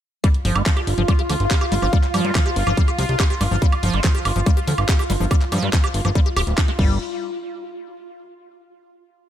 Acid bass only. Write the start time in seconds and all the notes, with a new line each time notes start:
0.24 G3
0.45 F3
0.56 G#3
0.66 F3
0.77 G4
0.98 F3
1.08 G3
1.19 G4
1.29 F3
1.51 G4
1.61 G4
1.72 G3
1.82 F3
1.93 G3
2.14 F3
2.25 G#3
2.35 F3
2.46 G4
2.67 F3
2.77 G3
2.88 G4
2.98 F3
3.20 G4
3.30 G4
3.41 G3
3.51 F3
3.62 G3
3.83 F3
3.94 G#3
4.04 F3
4.15 G4
4.36 F3
4.46 G3
4.57 G4
4.68 F3
4.89 G4
4.99 G4
5.10 G3
5.20 F3
5.31 G3
5.52 F3
5.63 G#3
5.73 F3
5.84 G4
6.05 F3
6.15 G3
6.26 G4
6.37 G4
6.58 D4
6.68 G#3
6.79 G3